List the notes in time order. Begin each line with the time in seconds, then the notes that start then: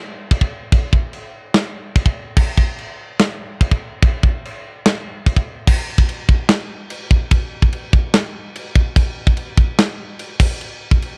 0.31 kick, china
0.41 kick
0.72 kick, china
0.93 kick
1.13 china
1.54 snare, china
1.95 kick, china
2.06 kick
2.37 kick, crash, china
2.58 kick
2.78 china
3.19 snare, china
3.61 kick, china
3.71 kick
4.03 kick, china
4.23 kick
4.45 china
4.86 snare, china
5.26 kick, china
5.36 kick
5.67 kick, crash
5.98 kick
6.09 crash
6.29 kick
6.49 snare, crash
6.90 crash
7.11 kick
7.31 kick, crash
7.62 kick
7.73 crash
7.93 kick
8.14 snare, crash
8.55 crash
8.75 kick
8.96 kick, crash
9.27 kick
9.37 crash
9.57 kick
9.79 snare, crash
10.19 crash
10.40 kick, crash
10.61 crash
10.91 kick
11.02 crash